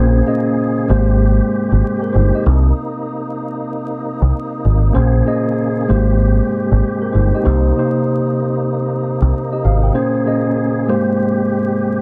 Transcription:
Already playing: A#1 A#2 C#3 A#3 C#4 G#4 A#4 C5 G5
0.26 A#2 A#3 C#4 G#4 D#5
0.88 G#1 G#2 C3 G#3 A#3 G4 C5
1.72 G#1
2.02 A#4
2.13 G1 D#4 C5
2.35 G4 D#5
2.46 C2 C3 A#3 D#4
4.22 C2
4.65 G#1
4.92 A#1 A#2 C#3 A#3 C#4 G#4 C5
5.25 A#2 A#3 C#4 G#4 D#5
5.87 G#1 G#2 C3 G#3 A#3 G4 C5
6.72 G#1
7.02 A#4
7.13 G1 D#4 C5
7.35 G4 D#5
7.43 C2 C3 A#3 D#4 G4 C5
7.77 C3 A#3 D#4 G4 C5
9.22 C2
9.52 G4 D#5
9.65 G#1 F5
9.83 A#4 G5
9.93 A#2 C#3 A#3 C#4 G#4 C5
10.25 A#2 A#3 C#4 G#4 D#5
10.87 G#2 C3 G#3 A#3 G4 C5

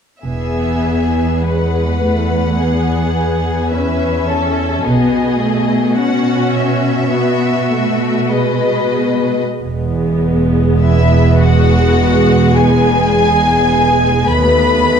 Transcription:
0.23 E1 E2 B3 G#4 E5
1.44 G#3 B4 F#5
2.03 A3
2.60 B3 G#4
3.15 G#4
3.72 C#4 B4 E5
4.30 A4
4.86 B1 B2 B3 G#4 D#5
5.41 A3
5.95 C#4 F#4 F#5
6.50 E5
7.09 B3 F#4
7.71 A3
8.30 G#3 B4 D#5
9.63 E1 E2 G#3 B3
10.81 E4 E5
11.41 F#4 F#5
12.57 G#4 G#5
14.29 D#2 A3 B3 B4 B5

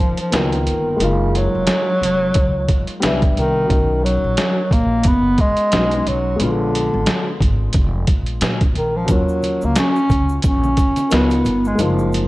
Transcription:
Already playing: D#3 F3 A#3 C#4 F4
0.17 F3, closed hi-hat
0.30 C#2 A#3 B3 D#4 F4, snare, closed hi-hat
0.36 D#3
0.52 closed hi-hat
0.67 G1, closed hi-hat
0.96 F#1 G#3 A#3, closed hi-hat
1.01 C#3 D#4 F4
1.35 F#3, closed hi-hat
1.55 F1
1.67 snare, closed hi-hat
2.02 F1, closed hi-hat
2.34 C#2, kick, closed hi-hat
2.68 kick, closed hi-hat
2.87 closed hi-hat
3.00 C2 G3 B3 D4 E5, snare, closed hi-hat
3.22 kick, closed hi-hat
3.37 C2 D#3, closed hi-hat
3.65 F#3 A#4
3.69 B1 C#4 D#4, kick, closed hi-hat
4.04 F#3, closed hi-hat
4.24 A#1
4.37 snare, closed hi-hat
4.71 A#1 A#3, kick, closed hi-hat
5.03 F#1 B3, kick, closed hi-hat
5.38 G#3, kick, closed hi-hat
5.57 closed hi-hat
5.71 B1 F#3 B3 C#4 D#4, snare, closed hi-hat
5.91 closed hi-hat
6.07 B1 F#3, closed hi-hat
6.36 G#3 B3, closed hi-hat
6.41 A#1 D3 D4 F4
6.75 closed hi-hat
6.94 G#1
7.06 snare, closed hi-hat
7.41 G#1, kick, closed hi-hat
7.73 F1, kick, closed hi-hat
8.07 A#1, kick, closed hi-hat
8.26 closed hi-hat
8.41 A#2, snare, closed hi-hat
8.61 kick, closed hi-hat
8.75 A#1 D#3, closed hi-hat
8.97 F3
9.05 F#3 A#3, kick, closed hi-hat, shaker
9.09 D#2 F#3 C#4 F4
9.29 shaker
9.42 closed hi-hat, high conga, shaker
9.61 C#2 A#3, shaker
9.76 C#4, snare, closed hi-hat, shaker
9.96 shaker
10.10 C#2, kick, closed hi-hat, low conga, shaker
10.29 shaker
10.42 A#1, kick, closed hi-hat, high conga, shaker
10.47 C#4
10.64 high conga, shaker
10.77 kick, closed hi-hat, shaker
10.96 closed hi-hat, high conga, shaker
11.09 C#2 B3 D#4 F4 A#4, snare, closed hi-hat, shaker
11.14 B3
11.30 closed hi-hat, shaker
11.45 G1, closed hi-hat, low conga, shaker
11.65 G#3, shaker
11.75 F#1 G#3 A#3, closed hi-hat, shaker
11.79 F3 D#4 F4
11.99 shaker
12.12 closed hi-hat, high conga, shaker

